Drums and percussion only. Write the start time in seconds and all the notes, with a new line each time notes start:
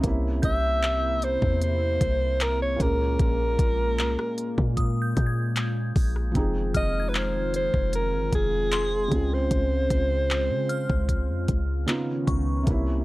0.04 kick, closed hi-hat
0.43 kick, closed hi-hat
0.83 clap
1.22 closed hi-hat
1.42 kick
1.62 closed hi-hat
2.01 kick, closed hi-hat
2.40 clap, closed hi-hat
2.80 kick, closed hi-hat
3.19 kick, closed hi-hat
3.59 kick, closed hi-hat
3.99 clap
4.19 cross-stick
4.38 closed hi-hat
4.58 kick
4.77 kick, closed hi-hat
5.17 kick, closed hi-hat
5.56 clap, closed hi-hat
5.96 kick, open hi-hat
6.16 cross-stick
6.35 kick, closed hi-hat
6.75 kick, closed hi-hat
7.15 clap
7.54 closed hi-hat
7.74 kick
7.93 closed hi-hat
8.33 kick, closed hi-hat
8.72 clap, closed hi-hat
9.12 kick, closed hi-hat
9.51 kick, closed hi-hat
9.90 kick, closed hi-hat
10.31 clap
10.69 closed hi-hat
10.90 kick
11.09 kick, closed hi-hat
11.48 kick, closed hi-hat
11.88 clap, closed hi-hat
12.27 kick, closed hi-hat
12.67 kick, closed hi-hat